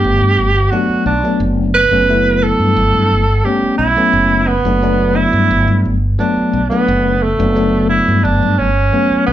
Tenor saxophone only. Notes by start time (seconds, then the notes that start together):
Already playing: G4
0.71 F#4
1.06 D4
1.74 B4
2.43 A4
3.44 G4
3.78 E4
4.47 B3
5.16 E4
6.19 D4
6.69 B3
7.22 A3
7.89 E4
8.23 D4
8.58 C#4
9.26 B3